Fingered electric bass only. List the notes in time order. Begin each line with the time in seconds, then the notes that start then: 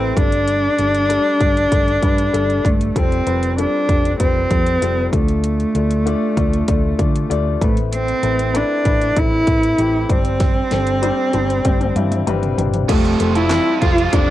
Already playing: A1
0.16 G1
0.79 G1
1.41 G1
1.72 G1
2.03 G2
2.34 G1
2.65 G1
2.96 F1
3.26 F1
3.89 F1
4.20 F1
4.51 F2
4.82 F1
5.13 D2
5.75 D2
6.37 D2
6.68 D2
6.99 D3
7.30 D2
7.61 A1
8.23 A1
8.85 A1
9.16 A1
9.47 A2
9.78 A1
10.10 G1
10.72 G1
11.34 G1
11.65 G1
11.96 G2
12.27 G1
12.58 G1
12.89 F1
13.20 F1
13.82 F1
14.13 F1